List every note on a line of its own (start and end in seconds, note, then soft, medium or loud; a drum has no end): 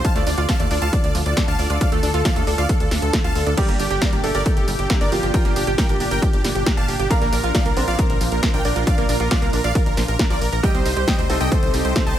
0.00 3.54 F4 loud
0.04 3.54 D3 medium
0.04 0.08 F3 medium
0.04 10.59 D4 medium
0.04 3.54 A4 medium
0.04 0.13 F5 medium
0.04 0.13 A5 loud
0.04 kick loud
0.04 closed hi-hat loud
0.15 0.24 D2 medium
0.15 0.22 A3 loud
0.15 0.24 D5 medium
0.15 closed hi-hat soft
0.27 0.35 D2 loud
0.27 0.29 D4 medium
0.27 0.35 D5 medium
0.27 open hi-hat loud
0.38 0.46 D2 medium
0.38 0.42 F4 loud
0.38 0.46 D5 medium
0.38 closed hi-hat soft
0.49 0.53 F3 loud
0.49 0.57 F5 medium
0.49 0.57 A5 medium
0.49 kick loud
0.49 snare loud
0.49 closed hi-hat medium
0.60 0.68 D#2 medium
0.60 0.64 A3 medium
0.60 0.68 D5 medium
0.60 closed hi-hat soft
0.71 0.79 D2 loud
0.71 0.77 D4 medium
0.71 0.79 D5 medium
0.71 open hi-hat medium
0.82 0.90 D2 medium
0.82 0.86 F4 medium
0.82 0.90 F5 medium
0.82 0.90 A5 medium
0.82 closed hi-hat soft
0.93 1.01 D5 medium
0.93 kick loud
0.93 closed hi-hat medium
1.04 1.12 D2 medium
1.04 1.12 D5 medium
1.04 closed hi-hat soft
1.15 1.23 D2 loud
1.15 1.17 F3 medium
1.15 open hi-hat loud
1.26 1.34 D2 medium
1.26 1.34 D5 medium
1.26 closed hi-hat soft
1.37 1.39 A3 loud
1.37 1.45 D5 medium
1.37 kick loud
1.37 snare loud
1.37 closed hi-hat loud
1.48 1.56 D2 medium
1.48 1.52 D4 medium
1.48 1.56 F5 medium
1.48 1.56 A5 loud
1.48 closed hi-hat soft
1.59 1.67 D2 loud
1.59 1.67 D5 medium
1.59 open hi-hat medium
1.70 1.78 D2 medium
1.70 1.74 F4 medium
1.70 1.78 D5 medium
1.70 closed hi-hat soft
1.81 1.85 F3 medium
1.81 1.89 D5 medium
1.81 1.89 F5 loud
1.81 kick loud
1.81 closed hi-hat loud
1.92 2.00 D2 medium
1.92 1.98 A3 loud
1.92 2.00 A4 medium
1.92 closed hi-hat soft
2.03 2.11 D2 loud
2.03 2.05 D4 medium
2.03 2.11 A4 medium
2.03 open hi-hat loud
2.14 2.22 D2 medium
2.14 2.18 F4 loud
2.14 2.22 A4 medium
2.14 closed hi-hat soft
2.25 2.29 F3 loud
2.25 2.33 D5 medium
2.25 2.33 F5 loud
2.25 2.33 F5 medium
2.25 kick loud
2.25 snare loud
2.25 closed hi-hat loud
2.36 2.45 D#2 medium
2.36 2.40 A3 medium
2.36 2.44 A4 medium
2.36 closed hi-hat soft
2.47 2.56 D2 loud
2.47 2.53 D4 medium
2.47 2.55 A4 medium
2.47 open hi-hat medium
2.58 2.67 D2 medium
2.58 2.62 F4 medium
2.58 2.66 D5 medium
2.58 2.66 F5 medium
2.58 2.66 F5 loud
2.58 closed hi-hat soft
2.69 2.77 A4 medium
2.69 kick loud
2.69 closed hi-hat loud
2.80 2.89 D2 medium
2.80 2.88 A4 medium
2.80 closed hi-hat soft
2.91 3.00 D2 loud
2.91 2.94 A4 medium
2.91 snare medium
2.91 open hi-hat loud
3.02 3.11 D2 medium
3.02 3.10 A4 medium
3.02 3.11 A4 medium
3.02 closed hi-hat soft
3.13 3.16 F3 medium
3.13 3.21 A4 medium
3.13 3.22 A4 medium
3.13 kick loud
3.13 snare loud
3.13 closed hi-hat loud
3.24 3.33 D2 medium
3.24 3.28 F4 medium
3.24 3.32 F5 medium
3.24 3.32 A5 medium
3.24 3.33 A5 loud
3.24 closed hi-hat soft
3.35 3.44 D2 loud
3.35 3.44 A4 medium
3.35 open hi-hat medium
3.46 3.55 D2 medium
3.46 3.52 D4 medium
3.46 3.55 A4 medium
3.46 closed hi-hat soft
3.57 10.59 A#2 medium
3.57 4.15 G3 medium
3.57 3.61 G3 medium
3.57 4.15 G4 loud
3.57 7.07 G4 loud
3.57 3.66 A#4 medium
3.57 3.66 D5 loud
3.57 kick loud
3.57 closed hi-hat loud
3.57 crash medium
3.68 3.77 G1 medium
3.68 3.74 A#3 loud
3.68 3.77 G4 medium
3.68 closed hi-hat soft
3.80 3.88 G1 loud
3.80 3.82 D4 medium
3.80 3.88 G4 medium
3.80 open hi-hat loud
3.91 3.99 G1 medium
3.91 3.95 G4 loud
3.91 3.99 G4 medium
3.91 closed hi-hat soft
4.02 4.06 G3 loud
4.02 4.10 A#4 medium
4.02 4.10 D5 loud
4.02 4.10 D5 medium
4.02 kick loud
4.02 snare loud
4.02 closed hi-hat loud
4.13 4.21 A1 medium
4.13 4.17 A#3 medium
4.13 4.21 G4 medium
4.13 closed hi-hat soft
4.24 4.32 G1 loud
4.24 5.03 A3 medium
4.24 4.30 D4 medium
4.24 4.32 G4 medium
4.24 5.03 A4 medium
4.24 open hi-hat medium
4.35 4.43 G1 medium
4.35 4.39 G4 medium
4.35 4.43 A#4 medium
4.35 4.43 D5 loud
4.35 4.43 D5 medium
4.35 closed hi-hat soft
4.46 4.54 G4 medium
4.46 kick loud
4.46 closed hi-hat loud
4.57 4.65 G1 medium
4.57 4.65 G4 medium
4.57 closed hi-hat soft
4.68 4.76 G1 loud
4.68 4.70 G3 medium
4.68 open hi-hat loud
4.79 4.87 G1 medium
4.79 4.87 G4 medium
4.79 closed hi-hat soft
4.90 4.92 A#3 loud
4.90 4.98 G4 medium
4.90 kick loud
4.90 snare loud
4.90 closed hi-hat medium
5.01 5.09 G1 medium
5.01 5.05 D4 medium
5.01 5.09 A#4 medium
5.01 5.09 D5 loud
5.01 closed hi-hat soft
5.12 5.20 G1 loud
5.12 7.02 F3 medium
5.12 7.02 F4 loud
5.12 5.20 G4 medium
5.12 open hi-hat medium
5.23 5.31 G1 medium
5.23 5.31 G4 medium
5.23 5.27 G4 medium
5.23 5.31 G4 medium
5.23 closed hi-hat soft
5.34 5.38 G3 medium
5.34 5.42 A#4 medium
5.34 5.42 G5 loud
5.34 kick loud
5.34 closed hi-hat loud
5.45 5.54 G1 medium
5.45 5.51 A#3 loud
5.45 5.53 G4 medium
5.45 closed hi-hat soft
5.56 5.65 G1 loud
5.56 5.58 D4 medium
5.56 5.64 G4 medium
5.56 open hi-hat loud
5.67 5.76 G1 medium
5.67 5.75 G4 medium
5.67 5.71 G4 loud
5.67 closed hi-hat soft
5.78 5.82 G3 loud
5.78 5.86 A#4 medium
5.78 5.86 G5 medium
5.78 5.86 G5 loud
5.78 kick loud
5.78 snare loud
5.78 closed hi-hat medium
5.89 5.98 A1 medium
5.89 5.93 A#3 medium
5.89 5.97 G4 medium
5.89 closed hi-hat soft
6.00 6.09 G1 loud
6.00 6.06 D4 medium
6.00 6.08 G4 medium
6.00 open hi-hat loud
6.11 6.20 G1 medium
6.11 6.15 G4 medium
6.11 6.19 A#4 medium
6.11 6.19 G5 loud
6.11 6.19 G5 medium
6.11 closed hi-hat soft
6.22 6.30 G4 medium
6.22 kick loud
6.22 closed hi-hat loud
6.33 6.42 G1 medium
6.33 6.41 G4 medium
6.33 closed hi-hat soft
6.44 6.53 G1 loud
6.44 6.47 G3 medium
6.44 snare medium
6.44 open hi-hat loud
6.55 6.64 G1 medium
6.55 6.63 G4 medium
6.55 closed hi-hat soft
6.66 6.69 A#3 loud
6.66 6.74 G4 medium
6.66 6.75 G4 medium
6.66 kick loud
6.66 snare loud
6.66 closed hi-hat loud
6.77 6.86 G1 medium
6.77 6.81 D4 medium
6.77 6.85 F5 medium
6.77 6.85 A5 medium
6.77 6.86 A5 loud
6.77 closed hi-hat soft
6.88 6.97 G1 loud
6.88 6.96 G4 medium
6.88 6.97 G4 medium
6.88 open hi-hat medium
6.99 7.08 G1 medium
6.99 7.03 G4 medium
6.99 7.08 G4 medium
6.99 closed hi-hat soft
7.10 7.14 F3 medium
7.10 7.68 A#3 medium
7.10 10.60 F4 loud
7.10 7.68 A#4 loud
7.10 7.19 D5 medium
7.10 7.19 F5 loud
7.10 kick loud
7.10 closed hi-hat medium
7.21 7.30 A#1 medium
7.21 7.27 A#3 loud
7.21 7.30 A#4 medium
7.21 closed hi-hat soft
7.32 7.41 A#1 loud
7.32 7.35 D4 medium
7.32 7.41 A#4 medium
7.32 open hi-hat loud
7.43 7.52 A#1 medium
7.43 7.47 F4 loud
7.43 7.52 A#4 medium
7.43 closed hi-hat soft
7.55 7.59 F3 loud
7.55 7.63 D5 medium
7.55 7.63 F5 medium
7.55 kick loud
7.55 snare loud
7.55 closed hi-hat medium
7.65 7.74 C2 medium
7.65 7.70 A#3 medium
7.65 7.74 A#4 medium
7.65 closed hi-hat soft
7.76 7.85 A#1 loud
7.76 8.56 C4 medium
7.76 7.83 D4 medium
7.76 7.85 A#4 medium
7.76 8.56 C5 medium
7.76 open hi-hat loud
7.88 7.96 A#1 medium
7.88 7.92 F4 medium
7.88 7.96 D5 medium
7.88 7.96 F5 medium
7.88 closed hi-hat soft
7.99 8.07 A#4 medium
7.99 kick loud
7.99 closed hi-hat medium
8.10 8.18 A#1 medium
8.10 8.18 A#4 medium
8.10 closed hi-hat soft
8.21 8.29 A#1 loud
8.21 8.23 F3 medium
8.21 open hi-hat loud
8.32 8.40 A#1 medium
8.32 8.40 A#4 medium
8.32 closed hi-hat soft
8.43 8.45 A#3 loud
8.43 8.51 A#4 medium
8.43 kick loud
8.43 snare loud
8.43 closed hi-hat medium
8.54 8.62 A#1 medium
8.54 8.58 D4 medium
8.54 8.62 A#4 medium
8.54 8.62 G5 medium
8.54 8.62 G5 loud
8.54 closed hi-hat soft
8.65 8.73 A#1 loud
8.65 10.55 D4 medium
8.65 8.73 A#4 medium
8.65 10.55 D5 medium
8.65 open hi-hat loud
8.76 8.84 A#1 medium
8.76 8.80 F4 medium
8.76 8.84 A#4 medium
8.76 closed hi-hat soft
8.87 8.91 F3 medium
8.87 8.95 D5 medium
8.87 8.95 F5 loud
8.87 kick loud
8.87 closed hi-hat medium
8.98 9.06 A#1 medium
8.98 9.04 A#3 loud
8.98 9.06 A#4 medium
8.98 closed hi-hat soft
9.09 9.17 A#1 loud
9.09 9.11 D4 medium
9.09 9.17 A#4 medium
9.09 open hi-hat loud
9.20 9.28 A#1 medium
9.20 9.24 F4 loud
9.20 9.28 A#4 medium
9.20 closed hi-hat soft
9.31 9.35 F3 loud
9.31 9.39 D5 medium
9.31 9.39 F5 medium
9.31 9.39 F5 loud
9.31 kick loud
9.31 snare loud
9.31 closed hi-hat medium
9.42 9.50 C2 medium
9.42 9.46 A#3 medium
9.42 9.50 A#4 medium
9.42 closed hi-hat soft
9.53 9.62 A#1 loud
9.53 9.59 D4 medium
9.53 9.61 A#4 medium
9.53 open hi-hat loud
9.64 9.73 A#1 medium
9.64 9.68 F4 medium
9.64 9.72 D5 medium
9.64 9.72 F5 loud
9.64 9.72 F5 medium
9.64 closed hi-hat soft
9.75 9.83 A#4 medium
9.75 kick loud
9.75 closed hi-hat medium
9.86 9.95 A#1 medium
9.86 9.94 A#4 medium
9.86 closed hi-hat soft
9.97 10.06 A#1 loud
9.97 10.01 F3 loud
9.97 snare medium
9.97 open hi-hat loud
10.08 10.17 A#1 loud
10.08 10.16 A#4 medium
10.08 closed hi-hat soft
10.19 10.23 D4 medium
10.19 10.27 A#4 medium
10.19 kick loud
10.19 snare loud
10.19 closed hi-hat medium
10.30 10.39 A#1 medium
10.30 10.34 F3 loud
10.30 10.38 A#4 medium
10.30 10.38 D5 loud
10.30 closed hi-hat soft
10.41 10.50 A#1 loud
10.41 10.49 A#4 medium
10.41 10.50 A#4 medium
10.41 open hi-hat loud
10.52 10.61 A#1 medium
10.52 10.61 A#4 medium
10.52 10.56 A#4 loud
10.52 10.61 A#4 medium
10.52 closed hi-hat soft
10.63 12.19 C3 medium
10.63 11.21 G3 medium
10.63 10.67 G3 medium
10.63 12.19 C4 medium
10.63 12.19 D#4 medium
10.63 11.21 G4 loud
10.63 12.19 G4 loud
10.63 10.72 D#5 medium
10.63 10.71 G5 loud
10.63 10.72 G5 loud
10.63 kick loud
10.63 closed hi-hat medium
10.74 10.83 C2 medium
10.74 10.80 C4 loud
10.74 10.83 C5 medium
10.74 closed hi-hat soft
10.85 10.94 C2 loud
10.85 10.88 D#4 medium
10.85 10.93 C5 medium
10.85 10.94 C5 medium
10.85 open hi-hat loud
10.96 11.05 C2 medium
10.96 11.00 G4 loud
10.96 11.05 C5 medium
10.96 closed hi-hat soft
11.07 11.12 G3 loud
11.07 11.16 D#5 medium
11.07 11.16 G5 medium
11.07 kick loud
11.07 snare loud
11.07 closed hi-hat medium
11.18 11.27 D2 medium
11.18 11.23 C4 medium
11.18 11.27 C5 medium
11.18 closed hi-hat soft
11.29 11.38 C2 loud
11.29 12.09 A3 medium
11.29 11.36 D#4 medium
11.29 12.09 A4 medium
11.29 11.38 C5 medium
11.29 open hi-hat medium
11.40 11.49 C2 medium
11.40 11.45 G4 medium
11.40 11.49 D#5 medium
11.40 11.49 G5 medium
11.40 11.49 G5 loud
11.40 closed hi-hat soft
11.52 11.60 C5 medium
11.52 kick loud
11.52 closed hi-hat medium
11.63 11.71 C2 medium
11.63 11.71 C5 medium
11.63 closed hi-hat soft
11.74 11.82 C2 loud
11.74 11.76 G3 medium
11.74 open hi-hat loud
11.85 11.93 C2 medium
11.85 11.93 C5 medium
11.85 closed hi-hat soft
11.96 11.98 C4 loud
11.96 12.04 C5 medium
11.96 kick loud
11.96 snare loud
11.96 closed hi-hat medium
12.06 12.15 C2 medium
12.06 12.11 D#4 medium
12.06 12.15 C5 medium
12.06 12.15 A5 medium
12.06 12.15 A5 loud
12.06 closed hi-hat soft